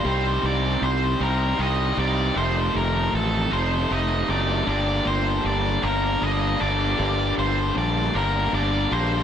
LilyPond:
<<
  \new Staff \with { instrumentName = "Lead electric guitar" } { \time 6/8 \key g \minor \tempo 4. = 52 c''8 d''8 c''8 bes'8 ees''8 d''8 | c''8 bes'8 a'8 c''8 ees''8 d''8 | d''8 c''8 d''8 bes'8 ees''8 d''8~ | d''8 c''8 d''8 bes'8 d''8 c''8 | }
  \new Staff \with { instrumentName = "Overdriven electric guitar" } { \clef bass \time 6/8 \key g \minor <c g c' ees'>4. <c g c' ees'>8 <c g c' ees'>8 <g c' ees'>8 | <f, c ees a ees'>4. <f, c ees a ees'>8 <c ees a ees'>8 <ees a ees'>8 | <g, d g bes d'>4. <g, d g bes d'>8 <d g bes d'>8 <g bes d'>8 | <g, d g bes d'>4. <g, d g bes d'>8 <d g bes d'>8 <g bes d'>8 | }
  \new Staff \with { instrumentName = "Fingered electric bass" } { \clef bass \time 6/8 \key g \minor c,8 c,8 c,8 c,8 c,8 c,8 | f,,8 f,,8 a,,8 f,,8 f,,8 fis,,8 | g,,8 g,,8 g,,8 g,,8 g,,8 g,,8 | g,,8 g,,8 bes,,8 g,,8 g,,8 bes,,8 | }
>>